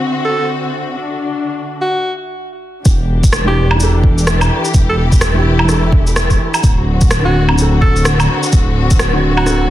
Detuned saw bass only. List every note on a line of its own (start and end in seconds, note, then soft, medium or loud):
2.85 3.55 E1 medium
3.56 4.49 E1 medium
4.74 5.44 E1 loud
5.45 6.38 E1 medium
6.63 7.33 D1 loud
7.34 8.27 D1 medium
8.53 9.22 D1 loud
9.23 9.70 D1 medium